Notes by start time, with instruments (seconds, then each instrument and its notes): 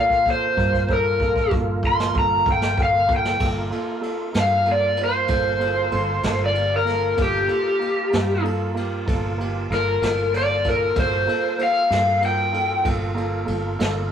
Already playing: grand piano A#3 F4 A4, tonewheel organ A#3 F4 A#4, electric slide guitar F5
0.10 kick
0.26 grand piano A#3 F4 A4, kick
0.31 electric slide guitar C5
0.57 fretless electric bass G2, grand piano A#3 F4 A#4, kick
0.73 kick
0.89 grand piano A#3 F4 A4, kick
0.93 electric slide guitar A#4
1.20 grand piano A#3 F4 A4, kick
1.36 kick
1.51 fretless electric bass G1, grand piano A#3 F4 A4, kick
1.83 grand piano A#3 F4 A4, kick
1.87 electric slide guitar C6
2.00 snare
2.13 fretless electric bass G1, grand piano A#3 F4 A4, kick
2.19 electric slide guitar A#5
2.46 fretless electric bass G1, grand piano A#3 F4 A4, kick
2.52 electric slide guitar G5
2.62 snare
2.77 grand piano A#3 F4 A4, kick
2.83 electric slide guitar F5
3.08 grand piano A#3 F4 A4, kick
3.16 electric slide guitar G5
3.25 snare
3.39 fretless electric bass G1, grand piano A#3 F4 A4, tonewheel organ A#3 F4 A#4, kick, crash
3.70 grand piano A#3 F4 A4, ride
4.01 grand piano A#3 F4 A4, ride
4.33 fretless electric bass G2, grand piano A#3 F4 A4, snare, ride
4.40 electric slide guitar F5
4.65 grand piano A#3 F4 A4, ride
4.72 electric slide guitar D5
4.97 grand piano A#3 F4 C5, ride
5.04 electric slide guitar C5
5.28 fretless electric bass G1, grand piano A#3 F4 A4, kick, ride
5.59 grand piano A#3 F4 A4, ride
5.91 fretless electric bass G1, grand piano A#3 F4 A4, ride
6.23 fretless electric bass G1, grand piano A#3 F4 A4, snare, ride
6.46 electric slide guitar D5
6.53 grand piano A#3 F4 G4, ride
6.76 electric slide guitar A#4
6.85 grand piano A#3 F4 A4, snare, ride
7.16 fretless electric bass G1, grand piano A#3 F4 A4, tonewheel organ F4 A#4 A5, kick, ride
7.22 electric slide guitar G4
7.48 grand piano A#3 F4 A4, ride
7.79 grand piano A#3 F4 G4, ride
8.10 fretless electric bass G2, grand piano A#3 F4 A#4, snare, ride
8.43 grand piano A#3 F4 A4, ride
8.74 grand piano A#3 F4 G4, ride
9.06 fretless electric bass G1, grand piano A#3 F4 A4, kick, ride
9.38 grand piano A#3 F4 G4, ride
9.70 fretless electric bass G1, grand piano A#3 F4 A4, electric slide guitar A#4, snare, ride
10.02 fretless electric bass G1, grand piano A#3 F4 A4, snare, ride
10.33 grand piano A#3 F4 A4, electric slide guitar D5, ride
10.64 grand piano A#3 F4 A4, kick, ride
10.69 electric slide guitar A#4
10.95 fretless electric bass G1, grand piano A#3 F4 A4, tonewheel organ F#4 A4 A#4, kick, ride
10.99 electric slide guitar C5
11.25 grand piano A#3 F4 A4, tonewheel organ F4 A4 A#4, ride
11.58 grand piano A#3 F4 A4, ride
11.63 electric slide guitar F5
11.90 fretless electric bass G2, grand piano A#3 F4 A4, snare, ride
12.21 grand piano A#3 F4 A#4, ride
12.25 electric slide guitar G5
12.52 grand piano A#3 F4 A4, ride
12.83 fretless electric bass G1, grand piano A#3 F4 A4, kick, ride
13.15 grand piano A#3 F4 A4, ride
13.45 fretless electric bass G1, grand piano A#3 F4 A4, ride
13.79 fretless electric bass G1, grand piano A#3 F4 A4, snare, ride